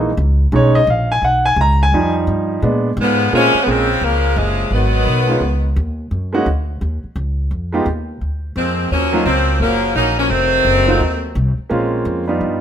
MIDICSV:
0, 0, Header, 1, 5, 480
1, 0, Start_track
1, 0, Tempo, 349447
1, 721, Time_signature, 4, 2, 24, 8
1, 17317, End_track
2, 0, Start_track
2, 0, Title_t, "Grand piano"
2, 0, Program_c, 0, 0
2, 725, Note_on_c, 0, 56, 56
2, 730, Note_on_c, 0, 61, 48
2, 741, Note_on_c, 0, 63, 56
2, 765, Note_on_c, 0, 73, 78
2, 1032, Note_on_c, 0, 75, 82
2, 1038, Note_off_c, 0, 73, 0
2, 1078, Note_off_c, 0, 56, 0
2, 1081, Note_off_c, 0, 61, 0
2, 1086, Note_off_c, 0, 63, 0
2, 1199, Note_off_c, 0, 75, 0
2, 1237, Note_on_c, 0, 77, 68
2, 1513, Note_off_c, 0, 77, 0
2, 1533, Note_on_c, 0, 80, 83
2, 1690, Note_off_c, 0, 80, 0
2, 1710, Note_on_c, 0, 78, 72
2, 1989, Note_off_c, 0, 78, 0
2, 1999, Note_on_c, 0, 80, 86
2, 2162, Note_off_c, 0, 80, 0
2, 2211, Note_on_c, 0, 82, 88
2, 2480, Note_off_c, 0, 82, 0
2, 2510, Note_on_c, 0, 80, 84
2, 2661, Note_on_c, 0, 55, 57
2, 2667, Note_on_c, 0, 53, 51
2, 2674, Note_on_c, 0, 63, 60
2, 2934, Note_off_c, 0, 80, 0
2, 3561, Note_off_c, 0, 55, 0
2, 3565, Note_off_c, 0, 53, 0
2, 3568, Note_off_c, 0, 63, 0
2, 3605, Note_on_c, 0, 56, 55
2, 3616, Note_on_c, 0, 59, 46
2, 3625, Note_on_c, 0, 62, 59
2, 3956, Note_off_c, 0, 56, 0
2, 3962, Note_off_c, 0, 59, 0
2, 3967, Note_off_c, 0, 62, 0
2, 4571, Note_on_c, 0, 56, 65
2, 4579, Note_on_c, 0, 58, 53
2, 4584, Note_on_c, 0, 60, 57
2, 4584, Note_on_c, 0, 61, 53
2, 4596, Note_on_c, 0, 65, 72
2, 4837, Note_off_c, 0, 56, 0
2, 4841, Note_off_c, 0, 58, 0
2, 4843, Note_off_c, 0, 61, 0
2, 4844, Note_off_c, 0, 60, 0
2, 4849, Note_off_c, 0, 65, 0
2, 5025, Note_on_c, 0, 56, 54
2, 5031, Note_on_c, 0, 58, 60
2, 5040, Note_on_c, 0, 60, 56
2, 5043, Note_on_c, 0, 61, 58
2, 5053, Note_on_c, 0, 68, 60
2, 5304, Note_off_c, 0, 56, 0
2, 5307, Note_off_c, 0, 58, 0
2, 5312, Note_off_c, 0, 60, 0
2, 5313, Note_off_c, 0, 61, 0
2, 5318, Note_off_c, 0, 68, 0
2, 7243, Note_on_c, 0, 56, 56
2, 7245, Note_on_c, 0, 59, 47
2, 7260, Note_on_c, 0, 61, 53
2, 7265, Note_on_c, 0, 63, 51
2, 7275, Note_on_c, 0, 65, 63
2, 7411, Note_off_c, 0, 56, 0
2, 7412, Note_off_c, 0, 59, 0
2, 7419, Note_off_c, 0, 61, 0
2, 7422, Note_off_c, 0, 63, 0
2, 7426, Note_off_c, 0, 65, 0
2, 8689, Note_on_c, 0, 56, 73
2, 8702, Note_on_c, 0, 58, 63
2, 8713, Note_on_c, 0, 61, 65
2, 8715, Note_on_c, 0, 66, 84
2, 8719, Note_on_c, 0, 63, 69
2, 8854, Note_off_c, 0, 56, 0
2, 8860, Note_off_c, 0, 58, 0
2, 8866, Note_off_c, 0, 61, 0
2, 8867, Note_off_c, 0, 66, 0
2, 8869, Note_off_c, 0, 63, 0
2, 10611, Note_on_c, 0, 56, 67
2, 10621, Note_on_c, 0, 59, 60
2, 10628, Note_on_c, 0, 63, 62
2, 10630, Note_on_c, 0, 65, 65
2, 10641, Note_on_c, 0, 67, 84
2, 10775, Note_off_c, 0, 56, 0
2, 10780, Note_off_c, 0, 59, 0
2, 10784, Note_off_c, 0, 63, 0
2, 10785, Note_off_c, 0, 65, 0
2, 10790, Note_off_c, 0, 67, 0
2, 12534, Note_on_c, 0, 54, 70
2, 12538, Note_on_c, 0, 58, 54
2, 12544, Note_on_c, 0, 61, 63
2, 12553, Note_on_c, 0, 63, 59
2, 12555, Note_on_c, 0, 65, 75
2, 12697, Note_off_c, 0, 54, 0
2, 12699, Note_off_c, 0, 58, 0
2, 12702, Note_off_c, 0, 61, 0
2, 12706, Note_off_c, 0, 63, 0
2, 12707, Note_off_c, 0, 65, 0
2, 14922, Note_on_c, 0, 54, 57
2, 14930, Note_on_c, 0, 57, 49
2, 14941, Note_on_c, 0, 60, 55
2, 14947, Note_on_c, 0, 63, 59
2, 14952, Note_on_c, 0, 65, 68
2, 15091, Note_off_c, 0, 54, 0
2, 15096, Note_off_c, 0, 57, 0
2, 15101, Note_off_c, 0, 60, 0
2, 15104, Note_off_c, 0, 63, 0
2, 15107, Note_off_c, 0, 65, 0
2, 16064, Note_on_c, 0, 56, 65
2, 16065, Note_on_c, 0, 58, 64
2, 16075, Note_on_c, 0, 60, 60
2, 16077, Note_on_c, 0, 61, 63
2, 16091, Note_on_c, 0, 65, 68
2, 16796, Note_off_c, 0, 56, 0
2, 16796, Note_off_c, 0, 58, 0
2, 16801, Note_off_c, 0, 60, 0
2, 16802, Note_off_c, 0, 61, 0
2, 16809, Note_off_c, 0, 65, 0
2, 16860, Note_on_c, 0, 59, 58
2, 16861, Note_on_c, 0, 55, 63
2, 16873, Note_on_c, 0, 62, 53
2, 16878, Note_on_c, 0, 65, 60
2, 16883, Note_on_c, 0, 63, 55
2, 17317, Note_off_c, 0, 55, 0
2, 17317, Note_off_c, 0, 59, 0
2, 17317, Note_off_c, 0, 62, 0
2, 17317, Note_off_c, 0, 63, 0
2, 17317, Note_off_c, 0, 65, 0
2, 17317, End_track
3, 0, Start_track
3, 0, Title_t, "Saxophone section"
3, 0, Program_c, 1, 65
3, 4135, Note_on_c, 1, 50, 80
3, 4135, Note_on_c, 1, 53, 84
3, 4137, Note_on_c, 1, 56, 85
3, 4139, Note_on_c, 1, 59, 96
3, 4554, Note_off_c, 1, 50, 0
3, 4554, Note_off_c, 1, 53, 0
3, 4555, Note_off_c, 1, 56, 0
3, 4556, Note_off_c, 1, 59, 0
3, 4600, Note_on_c, 1, 56, 87
3, 4603, Note_on_c, 1, 48, 89
3, 4605, Note_on_c, 1, 61, 110
3, 4607, Note_on_c, 1, 53, 88
3, 4986, Note_on_c, 1, 59, 77
3, 4987, Note_off_c, 1, 56, 0
3, 4989, Note_off_c, 1, 48, 0
3, 4990, Note_off_c, 1, 61, 0
3, 4991, Note_off_c, 1, 53, 0
3, 5047, Note_off_c, 1, 59, 0
3, 5075, Note_on_c, 1, 49, 88
3, 5077, Note_on_c, 1, 60, 90
3, 5079, Note_on_c, 1, 53, 77
3, 5080, Note_on_c, 1, 56, 83
3, 5530, Note_off_c, 1, 53, 0
3, 5533, Note_off_c, 1, 49, 0
3, 5537, Note_off_c, 1, 60, 0
3, 5538, Note_off_c, 1, 56, 0
3, 5545, Note_on_c, 1, 58, 93
3, 5547, Note_on_c, 1, 53, 78
3, 5549, Note_on_c, 1, 49, 79
3, 5553, Note_on_c, 1, 56, 85
3, 6000, Note_off_c, 1, 53, 0
3, 6001, Note_off_c, 1, 56, 0
3, 6002, Note_off_c, 1, 49, 0
3, 6011, Note_off_c, 1, 58, 0
3, 6016, Note_on_c, 1, 48, 75
3, 6017, Note_on_c, 1, 53, 68
3, 6018, Note_on_c, 1, 49, 76
3, 6018, Note_on_c, 1, 56, 83
3, 6486, Note_off_c, 1, 48, 0
3, 6487, Note_off_c, 1, 53, 0
3, 6487, Note_off_c, 1, 56, 0
3, 6488, Note_off_c, 1, 49, 0
3, 6499, Note_on_c, 1, 54, 75
3, 6499, Note_on_c, 1, 59, 93
3, 6502, Note_on_c, 1, 51, 82
3, 7393, Note_off_c, 1, 54, 0
3, 7873, Note_off_c, 1, 59, 0
3, 7875, Note_off_c, 1, 51, 0
3, 11773, Note_on_c, 1, 53, 68
3, 11773, Note_on_c, 1, 56, 74
3, 11776, Note_on_c, 1, 58, 62
3, 11777, Note_on_c, 1, 60, 78
3, 12213, Note_off_c, 1, 53, 0
3, 12213, Note_off_c, 1, 56, 0
3, 12214, Note_off_c, 1, 58, 0
3, 12215, Note_off_c, 1, 60, 0
3, 12253, Note_on_c, 1, 53, 86
3, 12255, Note_on_c, 1, 61, 88
3, 12256, Note_on_c, 1, 58, 78
3, 12260, Note_on_c, 1, 54, 83
3, 12693, Note_off_c, 1, 53, 0
3, 12694, Note_off_c, 1, 61, 0
3, 12695, Note_off_c, 1, 58, 0
3, 12697, Note_off_c, 1, 54, 0
3, 12719, Note_on_c, 1, 60, 89
3, 12721, Note_on_c, 1, 53, 72
3, 12722, Note_on_c, 1, 58, 75
3, 12728, Note_on_c, 1, 54, 71
3, 13166, Note_off_c, 1, 53, 0
3, 13166, Note_off_c, 1, 60, 0
3, 13167, Note_off_c, 1, 58, 0
3, 13170, Note_off_c, 1, 54, 0
3, 13200, Note_on_c, 1, 58, 87
3, 13203, Note_on_c, 1, 49, 84
3, 13205, Note_on_c, 1, 54, 79
3, 13206, Note_on_c, 1, 53, 84
3, 13646, Note_off_c, 1, 58, 0
3, 13648, Note_off_c, 1, 49, 0
3, 13649, Note_off_c, 1, 53, 0
3, 13649, Note_off_c, 1, 54, 0
3, 13678, Note_on_c, 1, 63, 96
3, 13679, Note_on_c, 1, 54, 86
3, 13680, Note_on_c, 1, 58, 84
3, 13680, Note_on_c, 1, 61, 82
3, 13961, Note_off_c, 1, 63, 0
3, 13962, Note_off_c, 1, 54, 0
3, 13962, Note_off_c, 1, 58, 0
3, 13962, Note_off_c, 1, 61, 0
3, 13984, Note_on_c, 1, 58, 75
3, 13985, Note_on_c, 1, 53, 75
3, 13987, Note_on_c, 1, 54, 71
3, 13988, Note_on_c, 1, 61, 87
3, 14146, Note_off_c, 1, 54, 0
3, 14148, Note_off_c, 1, 53, 0
3, 14148, Note_off_c, 1, 58, 0
3, 14150, Note_off_c, 1, 61, 0
3, 14153, Note_on_c, 1, 60, 103
3, 14161, Note_on_c, 1, 51, 80
3, 14161, Note_on_c, 1, 57, 73
3, 14163, Note_on_c, 1, 54, 88
3, 15597, Note_off_c, 1, 60, 0
3, 15601, Note_off_c, 1, 51, 0
3, 15601, Note_off_c, 1, 57, 0
3, 15602, Note_off_c, 1, 54, 0
3, 17317, End_track
4, 0, Start_track
4, 0, Title_t, "Upright bass"
4, 0, Program_c, 2, 32
4, 0, Note_on_c, 2, 34, 96
4, 225, Note_off_c, 2, 34, 0
4, 239, Note_on_c, 2, 37, 102
4, 705, Note_off_c, 2, 37, 0
4, 715, Note_on_c, 2, 35, 97
4, 1183, Note_off_c, 2, 35, 0
4, 1196, Note_on_c, 2, 34, 97
4, 1663, Note_off_c, 2, 34, 0
4, 1672, Note_on_c, 2, 35, 83
4, 2141, Note_off_c, 2, 35, 0
4, 2148, Note_on_c, 2, 37, 99
4, 2618, Note_off_c, 2, 37, 0
4, 2636, Note_on_c, 2, 41, 80
4, 3102, Note_off_c, 2, 41, 0
4, 3119, Note_on_c, 2, 43, 91
4, 3583, Note_off_c, 2, 43, 0
4, 3604, Note_on_c, 2, 46, 88
4, 4066, Note_off_c, 2, 46, 0
4, 4076, Note_on_c, 2, 44, 106
4, 4542, Note_off_c, 2, 44, 0
4, 4566, Note_on_c, 2, 46, 80
4, 4844, Note_off_c, 2, 46, 0
4, 5035, Note_on_c, 2, 34, 80
4, 5502, Note_off_c, 2, 34, 0
4, 5511, Note_on_c, 2, 37, 85
4, 5979, Note_off_c, 2, 37, 0
4, 5995, Note_on_c, 2, 30, 99
4, 6455, Note_off_c, 2, 30, 0
4, 6463, Note_on_c, 2, 32, 78
4, 6936, Note_off_c, 2, 32, 0
4, 6944, Note_on_c, 2, 35, 88
4, 7416, Note_off_c, 2, 35, 0
4, 7429, Note_on_c, 2, 37, 80
4, 7898, Note_off_c, 2, 37, 0
4, 7917, Note_on_c, 2, 39, 96
4, 8383, Note_off_c, 2, 39, 0
4, 8394, Note_on_c, 2, 42, 88
4, 8861, Note_off_c, 2, 42, 0
4, 8875, Note_on_c, 2, 38, 93
4, 9342, Note_off_c, 2, 38, 0
4, 9356, Note_on_c, 2, 39, 87
4, 9640, Note_off_c, 2, 39, 0
4, 9829, Note_on_c, 2, 37, 94
4, 10299, Note_off_c, 2, 37, 0
4, 10314, Note_on_c, 2, 41, 80
4, 10782, Note_off_c, 2, 41, 0
4, 10791, Note_on_c, 2, 39, 94
4, 11260, Note_off_c, 2, 39, 0
4, 11281, Note_on_c, 2, 38, 77
4, 11746, Note_off_c, 2, 38, 0
4, 11753, Note_on_c, 2, 41, 89
4, 12222, Note_off_c, 2, 41, 0
4, 12241, Note_on_c, 2, 39, 82
4, 12706, Note_off_c, 2, 39, 0
4, 12713, Note_on_c, 2, 37, 93
4, 13177, Note_off_c, 2, 37, 0
4, 13185, Note_on_c, 2, 30, 77
4, 13658, Note_off_c, 2, 30, 0
4, 13668, Note_on_c, 2, 34, 89
4, 14139, Note_off_c, 2, 34, 0
4, 14148, Note_on_c, 2, 29, 83
4, 14616, Note_off_c, 2, 29, 0
4, 14624, Note_on_c, 2, 30, 93
4, 15097, Note_off_c, 2, 30, 0
4, 15104, Note_on_c, 2, 39, 85
4, 15578, Note_off_c, 2, 39, 0
4, 15595, Note_on_c, 2, 36, 99
4, 15880, Note_off_c, 2, 36, 0
4, 16078, Note_on_c, 2, 34, 84
4, 16545, Note_off_c, 2, 34, 0
4, 16554, Note_on_c, 2, 41, 96
4, 17023, Note_off_c, 2, 41, 0
4, 17042, Note_on_c, 2, 43, 86
4, 17317, Note_off_c, 2, 43, 0
4, 17317, End_track
5, 0, Start_track
5, 0, Title_t, "Muted upright bass strokes"
5, 4866, Note_on_c, 9, 29, 41
5, 5003, Note_off_c, 9, 29, 0
5, 9667, Note_on_c, 9, 29, 38
5, 9804, Note_off_c, 9, 29, 0
5, 15901, Note_on_c, 9, 29, 44
5, 16039, Note_off_c, 9, 29, 0
5, 17317, End_track
0, 0, End_of_file